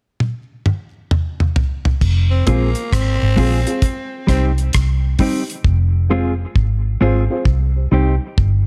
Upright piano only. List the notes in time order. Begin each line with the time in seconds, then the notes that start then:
2.46 C4 F4 G#4 C5
3.37 C4 F4 G#4 C5
3.66 C4 F4 G#4 C5
4.27 C4 D#4 G4 C5
5.18 C4 D#4 G4 C5
6.09 C4 F4 G#4 C5
7.00 C4 F4 G#4 C5
7.30 C4 F4 G#4 C5
7.76 G4 C5
7.91 C4 D#4 G4 C5